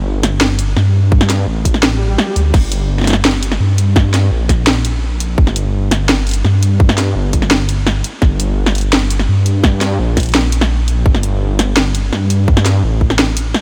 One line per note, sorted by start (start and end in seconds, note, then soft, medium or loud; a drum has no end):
0.00 0.75 G1 loud
0.23 snare medium
0.23 closed hi-hat medium
0.41 snare loud
0.59 closed hi-hat medium
0.77 1.46 G2 loud
0.77 snare medium
1.12 kick loud
1.21 snare medium
1.30 snare medium
1.30 closed hi-hat medium
1.47 2.17 A1 loud
1.65 kick medium
1.65 closed hi-hat medium
1.74 snare medium
1.83 snare loud
1.83 swell medium
2.18 snare medium
2.36 2.53 D2 loud
2.36 closed hi-hat medium
2.54 3.59 G1 loud
2.54 kick loud
2.54 snare medium
2.54 crash medium
2.72 closed hi-hat medium
2.98 snare soft
3.01 snare soft
3.04 snare medium
3.07 snare medium
3.07 closed hi-hat medium
3.10 snare medium
3.13 snare medium
3.25 snare loud
3.43 closed hi-hat medium
3.52 snare medium
3.60 4.30 G2 loud
3.78 closed hi-hat medium
3.96 kick loud
3.96 snare medium
4.14 snare medium
4.14 closed hi-hat medium
4.32 5.37 A#1 medium
4.49 kick medium
4.49 snare medium
4.49 closed hi-hat medium
4.67 snare loud
4.85 closed hi-hat medium
5.20 closed hi-hat medium
5.38 6.43 G1 loud
5.38 kick loud
5.47 snare soft
5.56 closed hi-hat medium
5.91 snare medium
5.91 closed hi-hat medium
6.09 snare loud
6.27 closed hi-hat soft
6.29 closed hi-hat soft
6.31 closed hi-hat medium
6.33 closed hi-hat medium
6.45 7.14 G2 loud
6.45 snare medium
6.63 closed hi-hat medium
6.80 kick loud
6.89 snare medium
6.98 snare medium
6.98 closed hi-hat medium
7.16 7.50 G1 medium
7.33 kick medium
7.33 closed hi-hat medium
7.42 snare soft
7.51 8.03 G1 loud
7.51 snare loud
7.69 closed hi-hat medium
7.87 snare medium
8.04 closed hi-hat medium
8.22 9.27 G1 loud
8.22 kick loud
8.22 snare medium
8.40 closed hi-hat medium
8.66 snare medium
8.75 closed hi-hat medium
8.78 closed hi-hat soft
8.81 closed hi-hat soft
8.93 snare loud
9.10 closed hi-hat medium
9.19 snare soft
9.29 9.98 G2 loud
9.46 closed hi-hat medium
9.64 kick loud
9.64 snare medium
9.81 snare medium
9.81 closed hi-hat medium
9.99 11.05 A#1 medium
10.17 kick medium
10.17 snare medium
10.17 closed hi-hat medium
10.20 closed hi-hat medium
10.23 closed hi-hat soft
10.26 closed hi-hat soft
10.29 closed hi-hat soft
10.32 snare loud
10.32 closed hi-hat soft
10.52 closed hi-hat medium
10.61 snare medium
10.88 closed hi-hat medium
11.06 12.11 G1 loud
11.06 kick loud
11.15 snare medium
11.23 closed hi-hat medium
11.59 snare medium
11.59 closed hi-hat medium
11.77 snare loud
11.95 closed hi-hat medium
12.13 12.82 G2 loud
12.13 snare medium
12.30 closed hi-hat medium
12.48 kick loud
12.57 snare medium
12.66 snare medium
12.66 closed hi-hat medium
12.84 13.53 A1 loud
13.01 kick medium
13.10 snare medium
13.19 snare loud
13.37 closed hi-hat medium
13.54 snare medium